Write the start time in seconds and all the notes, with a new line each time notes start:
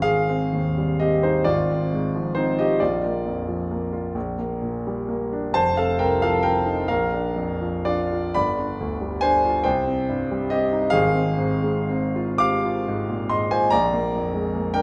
0.00 G#1 G#4 F5
0.29 C4
0.53 D#2
0.78 G3
1.00 C4 G4 D#5
1.23 D#4 C5
1.44 G#1 F4 D5
1.70 C4
1.93 G#2
2.16 F3
2.35 C4 D#4 C5
2.59 F4 G4 D#5
2.80 A#1 F4 D5
3.04 A#3
3.25 F2
3.48 F3
3.71 A#3
3.93 F4
4.15 A#1
4.39 A#3
4.62 A#2
4.87 G3
5.09 A#3
5.33 D4
5.52 F1 C5 A5
5.77 C4 A4 F5
5.99 C2 A#4 G5
6.22 F3 A4 F5
6.43 C4 A#4 G5
6.66 D#4
6.88 A#1 A#4 F5
7.13 D4
7.36 F2
7.62 F3
7.85 D4 F4 D5
8.12 F4
8.34 G1 D5 B5
8.59 D4
8.80 D2
9.01 G3
9.21 D4 C5 G#5
9.45 F4
9.64 C2 C5 G5
9.87 C4
10.09 G2
10.31 G3
10.50 C4 G4 D#5
10.72 D#4
10.90 G#1 G#4 F5
11.15 C4
11.38 G#2
11.63 G#3
11.90 C4
12.16 F4
12.38 G4 F5 D6
12.65 F4
12.88 G#2
13.09 A#2
13.29 G#2 D#5 C6
13.51 F4 C5 G#5
13.70 A#1 D5 A#5
13.93 A#3
14.15 F2
14.34 G#3
14.55 A#3
14.74 D4 A#4 G5